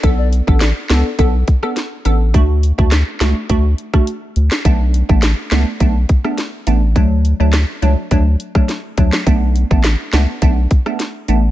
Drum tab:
HH |x-x-x-x-x-x-x-x-|x-x-x-x-x-x-x-x-|x-x-x-x-x-x-x-x-|x-x-x-x-x-x-x-x-|
CP |----x-x---------|----x-x--------x|----x-x---------|----x----------x|
SD |----o-o----ro---|----o-o----r---o|----o-o----ro---|----o------ro--o|
BD |o--o----o-o-----|o--o----o--o----|o--o----o-o-----|o-------o--o--o-|

HH |x-x-x-x-x-x-x-x-|
CP |----x-x---------|
SD |----o-o----ro---|
BD |o--o----o-o-----|